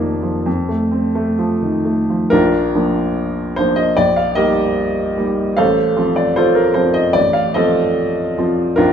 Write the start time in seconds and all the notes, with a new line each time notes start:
Already playing: F1 F2 D#3 F3 A#3 F4 D5
0.22 F3
0.46 F2
0.69 A3
0.92 C4
1.15 A3
1.39 F3
1.62 D#3
1.85 A3
2.10 F3
2.30 A#1 D4 F4 A#4
2.74 F3 A#3 D4
3.56 F3 A#3 D4 C5
3.76 D#5
3.97 A#1 D5
4.16 F5
4.35 G3 A#3 D#4 G4 A#4 D#5
5.17 G3 A#3 D#4
5.57 A1 A4 C5 F5
5.97 F3 C4 F4
6.16 D5
6.36 F4 A4 C5
6.55 A#4
6.74 F3 C4 F4 C5
6.94 D#5
7.13 A1 D5
7.33 F5
7.54 F3 C4 F4 A4 C5 D#5
8.38 F3 C4 F4
8.76 A#1 D4 F4 A#4